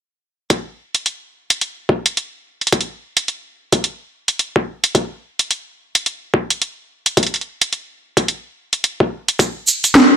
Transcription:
0.50 kick, closed hi-hat
0.95 closed hi-hat
1.06 closed hi-hat
1.50 closed hi-hat
1.61 closed hi-hat
1.89 kick
2.06 closed hi-hat
2.17 closed hi-hat
2.61 closed hi-hat
2.67 closed hi-hat
2.72 kick, closed hi-hat
2.81 closed hi-hat
3.17 closed hi-hat
3.28 closed hi-hat
3.72 kick, closed hi-hat
3.84 closed hi-hat
4.28 closed hi-hat
4.39 closed hi-hat
4.56 kick
4.84 closed hi-hat
4.95 kick, closed hi-hat
5.39 closed hi-hat
5.51 closed hi-hat
5.95 closed hi-hat
6.06 closed hi-hat
6.34 kick
6.50 closed hi-hat
6.62 closed hi-hat
7.06 closed hi-hat
7.17 kick, closed hi-hat
7.23 closed hi-hat
7.27 closed hi-hat
7.34 closed hi-hat
7.36 closed hi-hat
7.41 closed hi-hat
7.62 closed hi-hat
7.73 closed hi-hat
8.17 kick, closed hi-hat
8.28 closed hi-hat
8.73 closed hi-hat
8.84 closed hi-hat
9.00 kick
9.28 closed hi-hat
9.39 kick, closed hi-hat, shaker
9.67 shaker
9.84 closed hi-hat, shaker
9.95 snare, closed hi-hat, shaker

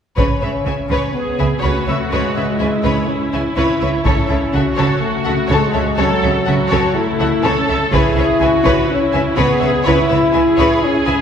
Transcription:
0.17 C#2 C#3 C#4 B4 C#5, taiko
0.42 C#2 C#3 B4 C#5 E5
0.66 C#2 C#3 B4 E5 G#5
0.90 C#2 C#3 B4 C#5
1.13 B3 G#4
1.39 C#2 C#3 B4 E5 G#5
1.62 C#2 C#3 A3 F#4 B4 C#5
1.87 C#2 C#3 B4 C#5 E5
2.11 C#2 C#3 G#3 B4 C#5
2.35 C#2 C#3 B4 C#5 E5
2.59 C#2 C#3 E4 B4 E5 G#5
2.84 C#2 C#3 B4 C#5
3.07 C#4
3.32 C#2 C#3 B4 E5 G#5
3.55 C#2 C#3 E4 B4 C#5
3.81 C#2 C#3 B4 C#5 E5
4.04 C#2 C#3 C#4 A4 C#5, taiko
4.28 C#2 C#3 A4 C#5 E5
4.53 C#2 C#3 F#4 A4 E5 F#5
4.77 C#2 C#3 A4 C#5
5.01 A3
5.24 C#2 C#3 A4 E5 F#5
5.49 C#2 C#3 G#3 A4 C#5
5.73 C#2 C#3 A4 C#5 E5
5.97 C#2 C#3 F#3 A4 C#5
6.22 C#2 C#3 A4 C#5 E5
6.45 C#2 C#3 F#4 A4 E5 F#5
6.70 C#2 C#3 A4 C#5
6.95 A3 E4
7.19 C#2 C#3 A4 E5 F#5
7.44 C#2 C#3 C#4 A4 C#5
7.68 C#2 C#3 A4 C#5 E5
7.92 C#2 C#3 E4 G#4 B4 C#5, taiko
8.16 C#2 C#3 B4 C#5 E5
8.39 C#2 C#3 F#4 B4 E5 G#5
8.65 C#2 C#3 B4 C#5, taiko
8.90 C#4 E4
9.13 C#2 C#3 B4 E5 G#5
9.37 C#2 C#3 B3 G#4 B4 C#5
9.61 C#2 C#3 B4 C#5 E5
9.85 C#2 C#3 E4 B4 C#5
10.10 C#2 C#3 B4 C#5 E5
10.33 C#2 C#3 G#4 B4 E5 G#5
10.58 C#2 C#3 B4 C#5
10.83 C#4
11.06 C#2 C#3 B4 E5 G#5

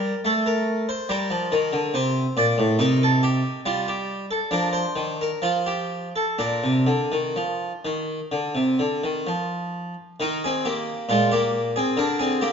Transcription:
Already playing: G3 A#4
0.25 A3 A4
0.46 A#4
0.89 C5
1.09 G3 G4 A#4
1.30 F3
1.52 D#3 A#4
1.72 D3
1.94 C3 C5
2.37 A#2 D5
2.58 A2
2.79 C3 D#4 A#4
3.03 A4
3.23 G4
3.66 G3 F4
3.88 G4
4.31 A4
4.51 F3 D4 A#4
4.73 C5
4.96 D#3
5.21 A#4
5.42 F3 F4
5.66 G4
6.16 A4
6.38 A#2 D4 A#4
6.64 C3
6.87 D3
7.12 D#3
7.36 F3
7.85 D#3
8.32 D3
8.55 C3
8.79 D3
9.04 D#3
9.27 F3
10.20 D#3 D#4 A#4
10.44 C4 G#4
10.65 A#3 G4
11.09 A#2 G#3 F4
11.31 A#3 G4
11.76 C4 G#4
11.97 D3 D4 A#4
12.19 C4 G#4
12.41 A#3 G4

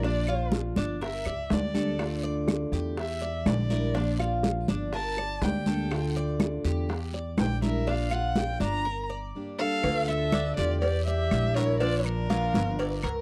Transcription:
Already playing: A#1
0.02 F3 A#3 D4 F4 D5, high bongo, high conga, long guiro
0.27 F4, high bongo, high conga, claves
0.52 high bongo, high conga, short guiro
0.76 G1 D4, high bongo, high conga, short guiro
1.01 A#4 E5, muted steel-string acoustic guitar stroke, high bongo, high conga, long guiro
1.25 C#2 D5, high bongo, high conga, claves
1.50 D2 G3 A#3 D4 G4 D5, high bongo, low bongo, high conga, short guiro
1.74 G3 A#3 D4 G4 A4, high conga, short guiro
1.98 D3 A3 D4 F4, high bongo, high conga, long guiro, claves
2.23 D5, high conga
2.48 high bongo, high conga, short guiro, claves
2.72 E2 G4, high bongo, high conga, short guiro
2.97 E5, muted steel-string acoustic guitar stroke, high bongo, high conga, long guiro
3.21 D5, high bongo, high conga
3.46 A#1 D3 G3 D4 E4 D5, high bongo, low bongo, high conga, short guiro, claves
3.70 G3 D4 E4 A#4, high bongo, high conga, short guiro
3.95 F3 A#3 D4 F4, high bongo, high conga, long guiro
4.19 F4, high bongo, high conga, claves
4.43 high bongo, high conga, short guiro
4.68 G1 D4, high bongo, high conga, short guiro
4.93 A#4 A5, muted steel-string acoustic guitar stroke, high bongo, high conga, long guiro
5.17 D5, high bongo, high conga, claves
5.42 D2 G3 A#3 D4 G4 G5, high bongo, low bongo, high conga, short guiro
5.66 G3 A#3 D4 G4 A4, high conga, short guiro
5.91 D3 A3 D4 F4, high bongo, high conga, long guiro, claves
6.15 D5, high conga
6.40 high bongo, high conga, short guiro, claves
6.64 E2 G4, high bongo, high conga, short guiro
6.89 muted steel-string acoustic guitar stroke, high bongo, high conga, long guiro
7.13 D5, high bongo, high conga
7.37 A#1 D3 G3 D4 E4 G5, high bongo, low bongo, high conga, short guiro, claves
7.62 G3 D4 E4 A#4 E5, high bongo, high conga, short guiro
7.87 F3 A#3 D4 F4 F5, high bongo, high conga, long guiro
8.11 F4 F#5, high bongo, high conga, claves
8.36 G5, high bongo, high conga, short guiro
8.60 G1 D4 A#5, high bongo, high conga, short guiro
8.85 A#4, muted steel-string acoustic guitar stroke
9.10 D5
9.35 G3 A#3 D4 G4
9.59 G3 A#3 D4 G4 A4 F5
9.83 D2 D3 A3 D4 F4, cowbell, high conga, long guiro, claves
10.08 A4 E5, high conga
10.32 A3 D4 F4, cowbell, high conga, short guiro, claves
10.57 E2 F4 G4 D5, high conga, short guiro
10.81 G4 D5, muted steel-string acoustic guitar stroke, cowbell, high conga, long guiro
11.06 G4 D5 E5, high conga
11.31 A#1 D3 G3 D4 E4, cowbell, high conga, short guiro, claves
11.55 G3 D4 E4 A#4 C#5, cowbell, short guiro
11.79 F3 A#3 D4 F4 D5, cowbell, high conga, long guiro
11.99 E4 C#5
12.05 D4 A#4, high conga, claves
12.29 F3 A#3 D4 F4, cowbell, high conga, short guiro
12.54 G1, cowbell, high conga, short guiro
12.79 D5, muted steel-string acoustic guitar stroke, cowbell, high conga, long guiro
13.03 C#2 A#4, cowbell, high conga, claves

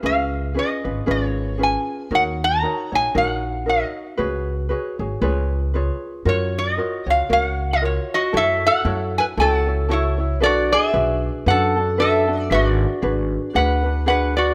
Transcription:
0.03 C#2 C#4 F4 G#4 B4 F5
0.54 C#4 F4 G#4 B4
0.59 D#5
0.84 G#1 C#4 F4 B4
1.06 G#1 C#4 F4 G#4 B4
1.11 C#5
1.58 C#4 F4 G#4 B4
1.63 G#5
2.11 D#2 D#4 F#4 A#4 C#5
2.15 F#5
2.44 A#5
2.62 D#4 F#4 A#4 C#5
2.92 A#1 D#4 F#4 C#5 G#5
3.15 A#1 D#4 F#4 A#4 C#5 F#5
3.66 D#4 F#4 A#4 C#5 D#5
4.17 C#2 F#4 G#4 B4 C#5
4.69 F#4 G#4 B4 C#5
4.99 G#1 F#4 G#4 C#5
5.22 C#2 F4 G#4 B4 C#5
5.74 F4 G#4 B4 C#5
6.25 F#2 F4 F#4 A#4 C#5
6.58 D#5
6.77 F4 F#4 A#4 C#5
7.06 C#2 F4 F#4 C#5 F5
7.29 C#2 F#4 A#4 C#5 F5
7.44 F#5
7.73 D#5
7.82 F4 F#4 A#4 C#5
8.14 F#4 D#5
8.33 F#2 E4 F#4 A4 C#5
8.37 A4 E5
8.67 A4 F#5
8.84 F#2 E4 F#4 A4 C#5
9.18 B4 G#5
9.37 C#2 E4 F#4 A4 C#5 F#5
9.41 A4
9.66 E4 F#4 C#5
9.89 E4 F#4 A4 C#5
9.93 E4
10.18 E4 F#4 C#5
10.40 B1 D4 F#4 A4 B4 D5
10.46 F#4
10.72 G#4 E5
10.93 B1 D4 F#4 B4
11.46 F#2 D4 F#4 A4 B4 F#5
11.50 A4
11.76 D4 F#4 A4
11.98 D4 F#4 A4 B4 E5
12.27 D4 F#4 A4
12.42 D5
12.50 G#1 D4 F#4 G#4 B4 D5
12.54 F#4
13.02 G#1 D4 F#4 G#4 B4
13.54 D2 D4 F#4 G#4 B4 F#5
13.83 D4 F#4 B4
14.06 D4 F#4 G#4 B4 F#5
14.36 D4 F#4 B4 D5

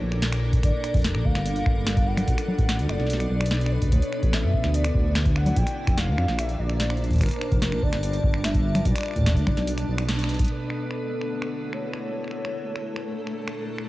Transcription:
Already playing: A#2 A#3 D4 A4 A#4 C#5 D5
0.02 A#1
0.12 finger snap
0.22 snare, closed hi-hat
0.32 finger snap, closed hi-hat
0.53 kick, closed hi-hat
0.63 G1 G3 D5, finger snap, kick, closed hi-hat
0.84 finger snap, closed hi-hat
0.94 F1, kick, closed hi-hat
0.97 closed hi-hat
0.99 closed hi-hat
1.02 snare, closed hi-hat
1.04 closed hi-hat
1.15 A#1, finger snap
1.25 D2 F5, kick
1.35 G1, finger snap, snare
1.46 closed hi-hat
1.56 closed hi-hat
1.66 G1, finger snap, kick
1.87 finger snap, snare, closed hi-hat
1.97 kick, closed hi-hat
2.07 F#5
2.17 finger snap, closed hi-hat, low conga
2.28 B1 B2, kick, closed hi-hat
2.38 finger snap, closed hi-hat
2.48 low conga
2.58 A1 B3, kick, closed hi-hat
2.69 finger snap, snare, closed hi-hat
2.79 D2, closed hi-hat
2.89 F#1 D5, finger snap
3.00 B1 B4, snare
3.06 snare, closed hi-hat
3.13 snare
3.20 finger snap, closed hi-hat
3.30 B1
3.41 finger snap
3.46 closed hi-hat
3.51 snare
3.61 closed hi-hat
3.66 finger snap
3.71 B4
3.82 F#1, kick, closed hi-hat
3.89 D2 D3, kick, closed hi-hat
3.92 C#5, kick
3.95 kick
4.02 closed hi-hat
4.13 finger snap
4.23 A1, kick, closed hi-hat
4.33 E5, finger snap, snare, closed hi-hat
4.43 F#2
4.50 A1 E4, kick
4.64 D2, finger snap, snare
4.74 D5, closed hi-hat
4.85 finger snap, closed hi-hat
4.95 D2, kick
5.15 finger snap, snare, closed hi-hat
5.26 kick, closed hi-hat
5.36 F#5, finger snap
5.46 closed hi-hat, low conga
5.56 A#1 A#2 G5, kick, closed hi-hat
5.67 A#3, finger snap, closed hi-hat
5.87 F1, finger snap, kick, closed hi-hat
5.98 F5, snare, closed hi-hat
6.08 D2 D4
6.18 F2 C5, finger snap
6.28 A#1 A5, snare
6.39 E5, finger snap, closed hi-hat
6.49 closed hi-hat
6.59 A#1 D5
6.70 finger snap
6.80 snare, closed hi-hat
6.90 finger snap, closed hi-hat
6.97 closed hi-hat
7.04 closed hi-hat
7.11 kick, closed hi-hat
7.13 kick, closed hi-hat
7.16 kick, closed hi-hat
7.18 G1, kick, closed hi-hat
7.21 G3 A#4, finger snap, kick, closed hi-hat
7.23 finger snap, closed hi-hat
7.26 finger snap, closed hi-hat
7.29 finger snap, closed hi-hat
7.31 finger snap, closed hi-hat
7.34 finger snap
7.36 finger snap
7.39 finger snap
7.41 finger snap
7.46 A#4
7.52 F1, kick, closed hi-hat
7.58 F4, snare, closed hi-hat
7.72 A#1, finger snap
7.82 D2 D5, kick
7.93 G1, finger snap, snare
8.03 closed hi-hat
8.13 closed hi-hat
8.24 G1, kick
8.34 finger snap
8.44 E5, finger snap, snare, closed hi-hat
8.54 kick, closed hi-hat
8.75 finger snap, closed hi-hat, low conga
8.85 B1 B2 D5, kick, closed hi-hat
8.96 finger snap, closed hi-hat
8.98 finger snap
9.01 finger snap
9.03 finger snap
9.06 finger snap
9.08 finger snap
9.11 B3, finger snap
9.13 A1, finger snap, kick, closed hi-hat
9.19 kick
9.21 kick
9.24 kick
9.26 finger snap, kick, snare, closed hi-hat
9.29 kick
9.31 kick
9.34 D2, kick, closed hi-hat
9.47 F#1, finger snap, kick, low conga
9.57 B1 B4, snare, closed hi-hat
9.67 closed hi-hat
9.78 finger snap, closed hi-hat
9.88 B1
9.98 finger snap
10.09 snare, closed hi-hat
10.19 closed hi-hat
10.24 finger snap
10.29 closed hi-hat
10.34 closed hi-hat
10.39 kick, closed hi-hat
10.41 closed hi-hat
10.45 closed hi-hat
10.48 D3 A3 A4, closed hi-hat
10.70 finger snap
10.80 A3
10.91 finger snap
11.10 E4
11.22 finger snap
11.42 finger snap
11.73 C#5, finger snap
11.93 finger snap
12.14 A#2
12.24 finger snap
12.28 finger snap
12.31 finger snap
12.39 A3
12.45 finger snap
12.76 finger snap
12.88 D4 A4
12.96 finger snap
13.27 finger snap
13.48 finger snap
13.78 finger snap

